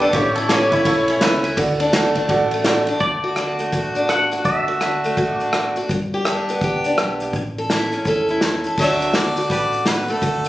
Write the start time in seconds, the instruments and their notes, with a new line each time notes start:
Already playing: steel-string acoustic guitar G3 B3 G4, grand piano G4 B4 D5
0.01 steel-string acoustic guitar D4, clean electric guitar A4
0.13 upright bass A1, steel-string acoustic guitar A2, grand piano E4 A4 C#5, clean electric guitar G4, kick, ride
0.35 steel-string acoustic guitar E4, clean electric guitar A4, ride
0.48 steel-string acoustic guitar E3 C#4, grand piano E4 A4 C#5, clean electric guitar G4, snare, ride
0.72 clean electric guitar E4, steel-string acoustic guitar E4, kick, ride
0.85 upright bass B1, steel-string acoustic guitar A2, grand piano E4 A4 C#5, kick, ride
1.08 steel-string acoustic guitar C#4, ride
1.21 upright bass C#2, steel-string acoustic guitar E3, grand piano E4 A4 B4, snare, ride
1.44 steel-string acoustic guitar E4, ride
1.57 upright bass D2, steel-string acoustic guitar D3, grand piano F#4 A4 D5, kick, ride
1.80 steel-string acoustic guitar D4, ride
1.93 steel-string acoustic guitar F#3 A3, grand piano F#4 A4 D5, snare, ride
2.15 steel-string acoustic guitar D4, kick, ride
2.29 upright bass A1, steel-string acoustic guitar A2, grand piano F#4 A4 D5, kick, ride
2.51 steel-string acoustic guitar A3, ride
2.64 steel-string acoustic guitar F#3, grand piano F#4 A4 D5 A5, snare, ride
2.87 steel-string acoustic guitar D4, ride
3.00 upright bass D2, steel-string acoustic guitar D3, clean electric guitar D5, kick, closed hi-hat
3.24 steel-string acoustic guitar F#4
3.36 steel-string acoustic guitar F#3 D4, cross-stick, closed hi-hat
3.59 steel-string acoustic guitar A3, closed hi-hat
3.72 upright bass A1, steel-string acoustic guitar A2 F#4, kick, closed hi-hat
3.95 steel-string acoustic guitar D4, closed hi-hat
4.09 steel-string acoustic guitar F#3, clean electric guitar F#5, cross-stick, closed hi-hat
4.31 steel-string acoustic guitar F#4, closed hi-hat
4.45 upright bass D2, steel-string acoustic guitar D3, clean electric guitar E5, kick, closed hi-hat
4.68 steel-string acoustic guitar F#4
4.81 steel-string acoustic guitar F#3 D4, cross-stick, closed hi-hat
5.04 steel-string acoustic guitar A3, closed hi-hat
5.17 upright bass A1, steel-string acoustic guitar A2 F#4, kick, closed hi-hat
5.31 clean electric guitar D5
5.40 steel-string acoustic guitar D4, closed hi-hat
5.53 steel-string acoustic guitar F#3, cross-stick, closed hi-hat
5.76 steel-string acoustic guitar F#4, closed hi-hat
5.89 upright bass G1, steel-string acoustic guitar G2, kick, closed hi-hat
6.14 steel-string acoustic guitar G4
6.25 steel-string acoustic guitar G3 D4, cross-stick, closed hi-hat
6.48 steel-string acoustic guitar B3, closed hi-hat
6.61 upright bass C#2, steel-string acoustic guitar G4, kick, closed hi-hat
6.84 steel-string acoustic guitar D4, closed hi-hat
6.98 upright bass B1, steel-string acoustic guitar G3, cross-stick, closed hi-hat
7.20 steel-string acoustic guitar G4, closed hi-hat
7.33 upright bass A1, steel-string acoustic guitar A2, kick, closed hi-hat
7.58 steel-string acoustic guitar A4
7.70 steel-string acoustic guitar E3 E4, snare, closed hi-hat
7.92 steel-string acoustic guitar C#4, closed hi-hat
8.05 upright bass E2, steel-string acoustic guitar A2 A4, kick, closed hi-hat
8.28 steel-string acoustic guitar E4, closed hi-hat
8.41 steel-string acoustic guitar E3, snare, closed hi-hat
8.64 steel-string acoustic guitar A4, closed hi-hat
8.77 upright bass D2, steel-string acoustic guitar D3 F#3 A3 D4, harmonica A4 C#5 E5, kick, crash
8.82 steel-string acoustic guitar F#4
9.00 steel-string acoustic guitar A3, closed hi-hat
9.14 steel-string acoustic guitar F#3 D4, harmonica D5, snare, closed hi-hat
9.37 steel-string acoustic guitar F#4, closed hi-hat
9.50 upright bass A1, steel-string acoustic guitar A2, harmonica G4 B4 D5, kick, closed hi-hat
9.72 closed hi-hat
9.86 steel-string acoustic guitar F#3, harmonica B4, snare, closed hi-hat
10.08 steel-string acoustic guitar A3, harmonica A4, closed hi-hat
10.22 upright bass D2, steel-string acoustic guitar D3, kick, closed hi-hat
10.44 closed hi-hat